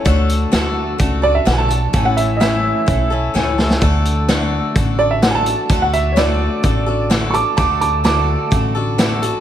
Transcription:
<<
  \new Staff \with { instrumentName = "Upright piano" } { \time 4/4 \key d \major \tempo 4 = 128 <a' cis''>8 r2 d''16 e''16 fis''16 <gis'' a''>8.~ | <gis'' a''>16 fis''16 e''8 <ees'' e''>2 r4 | r2 r8 d''16 e''16 fis''16 <gis'' a''>8.~ | <gis'' a''>16 fis''16 e''8 <cis'' d''>2 r8 <a'' cis''' d'''>8 |
<a'' d'''>8 <a'' d'''>8 <a'' d'''>2. | }
  \new Staff \with { instrumentName = "Steel-string acoustic guitar" } { \time 4/4 \key d \major <d a d' fis' a'>4 <d a d' fis' a'>4 <a d' fis' a'>8 <d' fis' a'>8 <d a d' fis' a'>8 <d' fis' a'>8 | <a, e a cis' e' a'>4 <a, e a cis' e' a'>4 <a cis' e' a'>8 <a cis' e' a'>8 <a, e a cis' e' a'>8 <a cis' e' a'>8 | <d a d' fis' a'>4 <d a d' fis' a'>4 <a d' fis' a'>8 <d' fis' a'>8 <d a d' fis' a'>8 <d' fis' a'>8 | <d a d' fis' a'>4 <d a d' fis' a'>4 <a d' fis' a'>8 <d' fis' a'>8 <d a d' fis' a'>8 <d' fis' a'>8 |
<d a d' fis' a'>4 <d a d' fis' a'>4 <a d' fis' a'>8 <d' fis' a'>8 <d a d' fis' a'>8 <d' fis' a'>8 | }
  \new Staff \with { instrumentName = "Upright bass" } { \clef bass \time 4/4 \key d \major d,4 d,4 cis,4 b,,4 | a,,2 b,,4 cis,4 | d,2 a,,2 | d,2 a,,2 |
d,2 a,,2 | }
  \new DrumStaff \with { instrumentName = "Drums" } \drummode { \time 4/4 <hh bd>8 hh8 <hh sn>4 <hh bd>4 <hh sn>8 hh8 | <hh bd>8 hh8 <hh sn>4 <hh bd>4 sn8 sn16 sn16 | <hh bd>8 hh8 <hh sn>4 <hh bd>4 <hh sn>8 hh8 | <hh bd>8 hh8 <hh sn>4 <hh bd>4 <hh sn>8 hh8 |
<hh bd>8 hh8 <hh sn>4 <hh bd>4 <hh sn>8 hh8 | }
>>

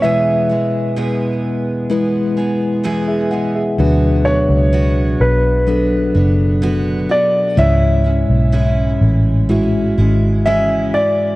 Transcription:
<<
  \new Staff \with { instrumentName = "Grand piano" } { \time 4/4 \key b \dorian \tempo 4 = 63 e''4 r2. | r8 cis''4 b'2 d''8 | e''4 r2 e''8 d''8 | }
  \new Staff \with { instrumentName = "Tine electric piano" } { \time 4/4 \key b \dorian << { r2. r16 <gis' e''>16 fis''16 <gis' e''>16~ | <gis' e''>16 r2. r8. | r2. gis''16 e''8. | } \\ { <gis e' b'>2 <gis e' b'>2 | <fis d' b'>2 <fis d' a'>2 | <gis e' cis''>2 <gis e' fis'>2 | } >> }
  \new Staff \with { instrumentName = "Tine electric piano" } { \clef bass \time 4/4 \key b \dorian b,4. r2 r8 | b,4. r2 r8 | gis,4. r2 r8 | }
  \new Staff \with { instrumentName = "Steel-string acoustic guitar" } { \time 4/4 \key b \dorian <e, b, e gis b gis'>8 <e gis b gis'>8 <e, b, e gis b gis'>4 <e gis b gis'>8 <e gis b gis'>8 <e, b, e gis b gis'>8 <e gis b gis'>8 | <d b d' fis'>8 <b d' fis'>8 <b d' fis'>4 <d b d' fis'>8 <b d' fis'>8 <d b d' fis'>8 <b d' fis'>8 | <cis e gis cis' e'>8 <gis cis' e'>8 <cis e gis cis' e'>4 <e gis cis' e'>8 <gis cis' e'>8 <cis e gis cis' e'>8 <gis e'>8 | }
  \new Staff \with { instrumentName = "Fingered electric bass" } { \clef bass \time 4/4 \key b \dorian r1 | d,8. cis,8. b,,4 fis,,4 r8 | cis,8. b,,8. a,,4 gis,,4 r8 | }
>>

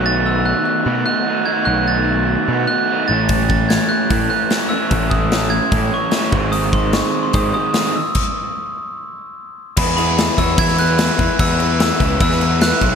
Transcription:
<<
  \new Staff \with { instrumentName = "Glockenspiel" } { \time 4/4 \key e \major \tempo 4 = 148 a'''8 e'''8 fis'''8 fis'''4 fis'''4 gis'''8 | fis'''8 a'''2 fis'''4 a'''8~ | a'''8 a'''8 gis'''8 fis'''4 fis'''4 e'''8~ | e'''8 dis'''4 gis'''4 cis'''4 r8 |
dis'''8 bis''8 cis'''8. bis''16 dis'''8 dis'''4 e'''8~ | e'''2. r4 | b''8 b''4 e'''8 gis'''8 fis'''4. | e'''4 e'''4 e'''4 fis'''8. r16 | }
  \new Staff \with { instrumentName = "Trumpet" } { \time 4/4 \key e \major r1 | r1 | r1 | r1 |
r1 | r1 | gis'8 gis'4 cis''8 e''8 b'4. | b'4 b'4 b'4 b'8. r16 | }
  \new Staff \with { instrumentName = "Overdriven electric guitar" } { \time 4/4 \key e \major <b, fis a dis'>2. <b, fis a dis'>8 <b, fis a dis'>8~ | <b, fis a dis'>2. <b, fis a dis'>8 <a, e a cis' e'>8~ | <a, e a cis' e'>2. <a, e a cis' e'>8 <a, e a cis' e'>8~ | <a, e a cis' e'>2. <a, e a cis' e'>8 <gis, dis gis bis dis'>8~ |
<gis, dis gis bis dis'>2. <gis, dis gis bis dis'>8 r8 | r1 | <e gis b e'>8 <e gis b e'>8 <e gis b e'>8 <e gis b e'>8 <e gis b e'>8 <e gis b e'>8 <e gis b e'>8 <e gis b e'>8 | <e gis b e'>8 <e gis b e'>8 <e gis b e'>8 <e gis b e'>8 <e gis b e'>8 <e gis b e'>8 <e gis b e'>8 <e gis b e'>8 | }
  \new Staff \with { instrumentName = "Overdriven electric guitar" } { \time 4/4 \key e \major <dis a dis' fis'>2 <dis a dis' fis'>8 <dis a dis' fis'>4 <dis a dis' fis'>8~ | <dis a dis' fis'>2 <dis a dis' fis'>8 <dis a dis' fis'>4 <e a cis'>8~ | <e a cis'>2 <e a cis'>8 <e a cis'>4 <e a cis'>8~ | <e a cis'>2 <e a cis'>8 <e a cis'>4 <dis gis bis>8~ |
<dis gis bis>2 <dis gis bis>8 <dis gis bis>4 r8 | r1 | r1 | r1 | }
  \new Staff \with { instrumentName = "Picked electric bass" } { \clef bass \time 4/4 \key e \major b,,4. r8 b,8 r4. | b,,2 b,8 r4 a,,8~ | a,,4. r8 a,8 r4. | a,,2 a,8 r4 gis,,8~ |
gis,,4. r8 gis,8 r4. | r1 | e,4. e,8 e,4. e,16 r16 | e,4. cis,8 e,4. b,,8 | }
  \new DrumStaff \with { instrumentName = "Drums" } \drummode { \time 4/4 r4 r4 r4 r4 | r4 r4 r4 r4 | <hho bd>8 bd8 <hho sn>4 <hho bd>4 <hho sn>4 | <hho bd>8 bd8 <hho sn>4 <hho bd>4 <hho sn>8 bd8 |
hho8 bd8 <hho sn>4 <hho bd>4 <hho sn>4 | <cymc bd>4 r4 r4 r4 | <cymc bd>8 cymc8 <cymc sn>8 <cymc bd>8 <cymc bd>16 sn16 cymc8 <cymc sn>8 <cymc bd>8 | <cymc bd>8 cymc8 <cymc sn>8 <cymc bd>8 <cymc bd>16 sn16 cymc8 <cymc sn>8 <cymc bd>8 | }
>>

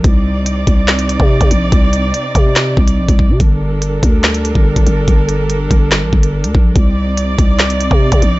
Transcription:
<<
  \new Staff \with { instrumentName = "String section" } { \time 4/4 \key c \dorian \tempo 4 = 143 <c c' ees' d''>1~ | <c c' ees' d''>1 | <g d' a' bes'>1~ | <g d' a' bes'>1 |
<c c' ees' d''>1 | }
  \new Staff \with { instrumentName = "808-style bass" } { \clef bass \time 4/4 \key c \dorian c,4. c,4~ c,16 c8 c16 bes,,8 | c,4 r8 c4 c,8 bes,,16 c,8 c16 | g,,4. d,4~ d,16 g,,8 g,,16 g,,8 | g,,4. g,,8. a,,16 g,,8. d,16 bes,,8 |
c,4. c,4~ c,16 c8 c16 bes,,8 | }
  \new DrumStaff \with { instrumentName = "Drums" } \drummode { \time 4/4 <hh bd>4 hh8 <hh bd>8 <hc hh sn>16 hh16 hh16 bd16 r16 <hh bd>16 hh8 | <hh bd>8 hh8 hh8 <hh bd>8 <hc hh sn>8 bd16 hh16 r16 <hh bd>16 bd8 | <hh bd>4 hh8 <hh bd>8 <hc hh sn>16 hh16 hh16 bd16 r16 <hh bd>16 hh8 | <hh bd>8 hh8 hh8 <hh bd>8 <hc hh sn>8 bd16 hh16 r16 hh16 bd8 |
<hh bd>4 hh8 <hh bd>8 <hc hh sn>16 hh16 hh16 bd16 r16 <hh bd>16 hh8 | }
>>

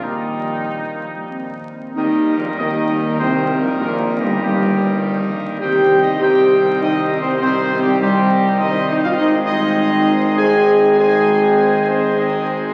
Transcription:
<<
  \new Staff \with { instrumentName = "Trumpet section" } { \time 3/4 \key ees \major \tempo 4 = 100 ees'2~ ees'8 r8 | \tuplet 3/2 { ees''4 bes'8 } ees''4 \tuplet 3/2 { c''4 bes'8 } | \tuplet 3/2 { bes'4 g'8 } g'4. r8 | \tuplet 3/2 { g''4 ees''8 } g''4 \tuplet 3/2 { ees''4 c''8 } |
\tuplet 3/2 { c''4 g'8 } g'4 ees''8 ees''16 f''16 | ees''8 ees''4. aes''4 | aes''4. c''8 ees''8 r8 | }
  \new Staff \with { instrumentName = "French horn section" } { \time 3/4 \key ees \major <bes ees'>4 \tuplet 3/2 { bes4 g8 } c'4 | \tuplet 3/2 { ees'4 bes8 } ees'4 \tuplet 3/2 { c'4 bes8 } | \tuplet 3/2 { bes4 g8 } g4. r8 | \tuplet 3/2 { g'4 ees'8 } g'4 \tuplet 3/2 { ees'4 c'8 } |
\tuplet 3/2 { c'4 g8 } g4 ees'8 ees'16 f'16 | ees'8 ees'4. aes'4 | aes'4. c'8 ees'8 r8 | }
  \new Staff \with { instrumentName = "Pipe organ" } { \time 3/4 \key ees \major r2. | <ees g ees' bes'>2.~ | <ees g ees' bes'>2. | <ees g ees' c''>2.~ |
<ees g ees' c''>2. | <ees aes ees' c''>2.~ | <ees aes ees' c''>2. | }
  \new Staff \with { instrumentName = "Trombone section" } { \clef bass \time 3/4 \key ees \major <bes, g>2~ <bes, g>8 r8 | \tuplet 3/2 { ees4 bes,8 } ees4 \tuplet 3/2 { c4 bes,8 } | \tuplet 3/2 { bes,4 g,8 } g,4. r8 | <ees c'>4 <ees c'>4 <ees c'>4 |
<ees c'>4 <ees c'>4 <ees c'>4 | <ees c'>2 <ees c'>4 | <ees c'>2 <ees c'>4 | }
  \new Staff \with { instrumentName = "Tuba" } { \clef bass \time 3/4 \key ees \major ees,2~ ees,8 r8 | \tuplet 3/2 { ees,4 bes,,8 } ees,4 \tuplet 3/2 { c,4 bes,,8 } | \tuplet 3/2 { bes,,4 g,,8 } g,,4. r8 | c,2.~ |
c,2. | aes,,2.~ | aes,,2. | }
>>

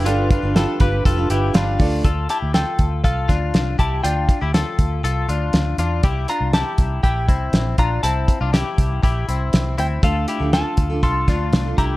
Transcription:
<<
  \new Staff \with { instrumentName = "Clean electric guitar" } { \time 4/4 \key d \minor \tempo 4 = 120 r1 | r8 a''8 g''4 f''4. a''8 | g''4. r2 r8 | r8 bes''8 a''4 g''4. bes''8 |
a''4. r2 g''8 | f''4 a''4 c'''4 r8 bes''8 | }
  \new Staff \with { instrumentName = "Upright piano" } { \time 4/4 \key d \minor <f' g' a'>8 <f' g' b'>8 <f' g' b'>8 <f' g' b'>8 <f' g' b'>8 <f' g' b'>8 <f' g' b'>8 <f' a' d''>8 | r1 | r1 | r1 |
r1 | r1 | }
  \new Staff \with { instrumentName = "Clean electric guitar" } { \time 4/4 \key d \minor <d' f'>8 <d' f'>8 <f' a'>8 <g' b'>8 <f' a'>8 <e' g'>8 <d' f'>4 | <f' a'>8 <e' g'>8 <f' a'>4 <f' a'>8 <d' f'>4 <e' g'>8 | <d' f'>8. <e' g'>16 <f' a'>4 <f' a'>8 <d' f'>4 <d' f'>8 | <e' g'>8 <d' f'>8 <e' g'>4 <e' g'>8 <c' e'>4 <d' f'>8 |
<c' e'>8. <d' f'>16 <e' g'>4 <e' g'>8 <c' e'>4 <c' e'>8 | <f' a'>8 <e' g'>8 <f' a'>4 <f' a'>8 <d' f'>4 <e' g'>8 | }
  \new Staff \with { instrumentName = "Steel-string acoustic guitar" } { \time 4/4 \key d \minor <g d' f' b'>8. <d' f' b'>8. <g d' f' b'>8. <d' f' b'>8. <g d' f' b'>8 <a d' f' a'>8 | r1 | r1 | r1 |
r1 | <a d' f' a'>8. <d' f' a'>4 <d' f' a'>8. <a d' f' a'>8. <d' f' a'>8. | }
  \new Staff \with { instrumentName = "Fingered electric bass" } { \clef bass \time 4/4 \key d \minor g,,8. g,,8 r16 g,,8 f,,8 g,,8 g,,8 d,8 | d,8 r16 d,8 r16 d,8 c,8 d,8 c,8 c,8 | d,8 r16 d,8 r16 d,8 c,8 d,8 d,8 e,8 | c,8 r16 c,8 r16 c,8 bes,,8 c,8 bes,,8 bes,,8 |
c,8 r16 c,8 r16 c,8 bes,,8 c,8 c,8 d,8 | d,8 r16 d,8 r16 d,8 c,8 d,8 c,8 c,8 | }
  \new DrumStaff \with { instrumentName = "Drums" } \drummode { \time 4/4 hh8 <hh bd>8 <hh sn>8 <hh bd>8 <hh bd>8 hh8 <hh sn>8 <hho bd>8 | <hh bd>8 hh8 <hh sn>8 <hh bd>8 <hh bd>8 <hh bd sn>8 <hh sn>8 <hh bd>8 | hh8 <hh bd>8 <hh sn>8 <hh bd>8 hh8 hh8 <hh sn>8 hh8 | <hh bd>8 hh8 <hh sn>8 <hh bd>8 <hh bd>8 <hh bd>8 <hh sn>8 <hh bd>8 |
hh8 <hh bd>8 <hh sn>8 <hh bd>8 <hh bd>8 hh8 <hh sn>8 hh8 | <hh bd>8 hh8 <hh sn>8 <hh bd>8 <hh bd>8 <hh bd sn>8 <hh sn>8 <hh bd>8 | }
>>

